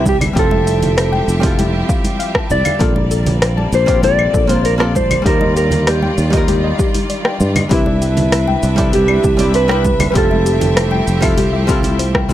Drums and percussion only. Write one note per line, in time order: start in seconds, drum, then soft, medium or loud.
0.06 kick medium
0.06 high conga medium
0.06 shaker medium
0.21 open hi-hat soft
0.21 low conga medium
0.21 claves medium
0.21 shaker soft
0.36 kick loud
0.36 open hi-hat medium
0.36 shaker soft
0.51 high conga medium
0.67 open hi-hat soft
0.67 shaker medium
0.82 open hi-hat soft
0.82 low conga medium
0.82 shaker soft
0.98 cross-stick medium
0.98 open hi-hat medium
0.98 shaker soft
1.13 high conga medium
1.28 open hi-hat soft
1.28 shaker medium
1.43 kick loud
1.43 open hi-hat soft
1.43 shaker soft
1.59 open hi-hat medium
1.59 high conga loud
1.59 shaker soft
1.89 kick loud
1.89 shaker medium
2.04 open hi-hat soft
2.04 high conga medium
2.04 shaker soft
2.20 open hi-hat soft
2.20 shaker soft
2.35 kick medium
2.35 cross-stick medium
2.50 high conga medium
2.50 shaker medium
2.65 open hi-hat soft
2.65 low conga medium
2.65 claves medium
2.65 shaker soft
2.80 kick loud
2.80 open hi-hat medium
2.80 shaker soft
2.96 high conga medium
3.11 open hi-hat soft
3.11 shaker medium
3.26 open hi-hat soft
3.26 low conga medium
3.26 shaker soft
3.42 cross-stick medium
3.42 open hi-hat medium
3.42 shaker soft
3.58 high conga medium
3.72 open hi-hat soft
3.72 shaker medium
3.88 kick loud
3.88 open hi-hat soft
3.88 shaker soft
4.03 open hi-hat medium
4.03 high conga medium
4.03 shaker soft
4.19 claves medium
4.34 kick loud
4.34 shaker medium
4.49 open hi-hat soft
4.49 high conga medium
4.49 shaker soft
4.65 open hi-hat medium
4.65 shaker soft
4.80 cross-stick medium
4.95 kick medium
4.95 high conga medium
4.95 shaker medium
5.11 open hi-hat soft
5.11 low conga medium
5.11 claves medium
5.11 shaker soft
5.26 kick loud
5.26 open hi-hat medium
5.26 shaker soft
5.41 high conga medium
5.57 open hi-hat soft
5.57 shaker medium
5.71 open hi-hat soft
5.71 low conga medium
5.71 shaker soft
5.87 cross-stick medium
5.87 open hi-hat medium
5.87 shaker soft
6.02 high conga medium
6.18 open hi-hat soft
6.18 shaker medium
6.33 kick loud
6.33 open hi-hat soft
6.33 shaker soft
6.48 open hi-hat medium
6.48 high conga medium
6.48 shaker soft
6.79 kick loud
6.79 shaker medium
6.94 open hi-hat soft
6.94 high conga medium
6.94 shaker soft
7.10 open hi-hat medium
7.10 shaker soft
7.25 cross-stick medium
7.40 high conga medium
7.40 shaker medium
7.56 open hi-hat soft
7.56 low conga medium
7.56 claves medium
7.56 shaker soft
7.71 kick loud
7.71 open hi-hat medium
7.71 shaker soft
7.86 high conga medium
8.02 open hi-hat soft
8.02 shaker medium
8.17 open hi-hat soft
8.17 low conga medium
8.17 shaker soft
8.32 cross-stick medium
8.32 open hi-hat medium
8.32 shaker soft
8.47 high conga medium
8.63 open hi-hat soft
8.63 shaker medium
8.78 kick loud
8.78 open hi-hat soft
8.78 shaker soft
8.93 open hi-hat medium
8.93 high conga medium
8.93 shaker soft
9.08 claves medium
9.24 kick medium
9.24 shaker medium
9.39 open hi-hat soft
9.39 high conga medium
9.39 shaker soft
9.54 open hi-hat medium
9.54 shaker soft
9.69 cross-stick medium
9.84 kick medium
9.84 high conga loud
9.84 shaker medium
10.00 open hi-hat soft
10.00 low conga medium
10.00 claves medium
10.00 shaker soft
10.15 kick loud
10.15 open hi-hat medium
10.15 shaker soft
10.31 high conga medium
10.46 open hi-hat soft
10.46 shaker medium
10.61 open hi-hat soft
10.61 low conga medium
10.61 shaker soft
10.77 cross-stick medium
10.77 open hi-hat medium
10.77 shaker soft
10.91 high conga medium
11.07 open hi-hat soft
11.07 shaker medium
11.22 kick loud
11.22 open hi-hat soft
11.22 claves medium
11.22 shaker soft
11.38 open hi-hat medium
11.38 high conga medium
11.38 shaker soft
11.69 kick loud
11.69 open hi-hat soft
11.69 shaker medium
11.83 open hi-hat medium
11.83 high conga medium
11.83 shaker soft
11.99 open hi-hat medium
11.99 shaker soft
12.15 kick medium
12.15 cross-stick medium
12.29 high conga medium
12.29 shaker medium